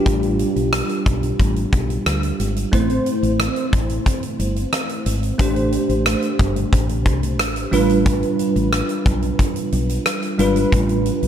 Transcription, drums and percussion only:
0.06 kick medium
0.06 closed hi-hat medium
0.23 closed hi-hat soft
0.39 closed hi-hat medium
0.56 closed hi-hat soft
0.73 cross-stick loud
0.73 closed hi-hat medium
0.89 closed hi-hat soft
1.06 kick medium
1.06 closed hi-hat medium
1.23 closed hi-hat soft
1.40 kick medium
1.40 closed hi-hat medium
1.56 closed hi-hat soft
1.73 kick medium
1.73 closed hi-hat medium
1.90 closed hi-hat soft
2.06 cross-stick loud
2.06 closed hi-hat medium
2.23 closed hi-hat soft
2.40 closed hi-hat medium
2.56 closed hi-hat soft
2.73 kick medium
2.73 closed hi-hat medium
2.90 closed hi-hat soft
3.06 closed hi-hat medium
3.23 closed hi-hat soft
3.40 cross-stick loud
3.40 closed hi-hat medium
3.56 closed hi-hat soft
3.73 kick medium
3.73 closed hi-hat medium
3.89 closed hi-hat soft
4.06 kick medium
4.06 closed hi-hat medium
4.23 closed hi-hat soft
4.39 closed hi-hat medium
4.56 closed hi-hat soft
4.72 cross-stick loud
4.72 closed hi-hat medium
4.89 closed hi-hat soft
5.06 closed hi-hat medium
5.23 closed hi-hat soft
5.39 kick medium
5.39 closed hi-hat medium
5.56 closed hi-hat soft
5.72 closed hi-hat medium
5.90 closed hi-hat soft
6.06 cross-stick loud
6.06 closed hi-hat medium
6.22 closed hi-hat soft
6.39 kick medium
6.39 closed hi-hat medium
6.56 closed hi-hat soft
6.73 kick medium
6.73 closed hi-hat medium
6.89 closed hi-hat soft
7.06 kick medium
7.06 closed hi-hat medium
7.23 closed hi-hat medium
7.39 cross-stick loud
7.39 closed hi-hat medium
7.56 closed hi-hat soft
7.73 closed hi-hat medium
7.89 closed hi-hat soft
8.06 kick medium
8.06 closed hi-hat medium
8.23 closed hi-hat soft
8.39 closed hi-hat medium
8.56 closed hi-hat soft
8.73 cross-stick loud
8.73 closed hi-hat medium
8.89 closed hi-hat soft
9.06 kick medium
9.06 closed hi-hat medium
9.22 closed hi-hat soft
9.39 kick medium
9.39 closed hi-hat medium
9.56 closed hi-hat medium
9.72 closed hi-hat medium
9.89 closed hi-hat medium
10.06 cross-stick loud
10.06 closed hi-hat medium
10.22 closed hi-hat soft
10.39 closed hi-hat medium
10.56 closed hi-hat soft
10.72 kick medium
10.72 closed hi-hat medium
10.89 closed hi-hat soft
11.06 closed hi-hat medium
11.23 closed hi-hat soft

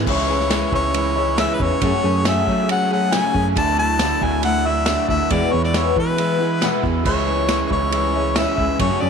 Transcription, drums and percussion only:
0.07 kick loud
0.07 crash loud
0.40 snare soft
0.51 snare loud
0.51 ride bell medium
0.51 tambourine loud
0.72 kick medium
0.94 ride bell medium
1.38 snare loud
1.38 ride bell medium
1.38 tambourine loud
1.60 kick medium
1.82 kick loud
1.82 ride bell medium
2.25 snare loud
2.25 ride bell medium
2.25 tambourine loud
2.47 kick medium
2.69 ride bell medium
3.12 snare loud
3.12 ride bell medium
3.12 tambourine loud
3.35 kick medium
3.56 kick loud
3.56 ride bell medium
3.99 snare loud
3.99 ride bell medium
3.99 tambourine loud
4.22 kick medium
4.43 ride bell medium
4.86 snare loud
4.86 ride bell medium
4.86 tambourine loud
5.09 kick medium
5.30 kick loud
5.30 ride bell medium
5.63 snare soft
5.74 snare loud
5.74 ride bell medium
5.74 tambourine loud
5.96 kick medium
6.18 ride bell medium
6.62 snare loud
6.62 ride bell medium
6.62 tambourine loud
6.84 kick medium
7.05 kick loud
7.05 crash loud
7.49 snare loud
7.49 ride bell medium
7.49 tambourine loud
7.71 kick medium
7.92 ride bell medium
8.36 snare loud
8.36 ride bell medium
8.36 tambourine loud
8.58 kick medium
8.79 kick loud
8.79 ride bell medium

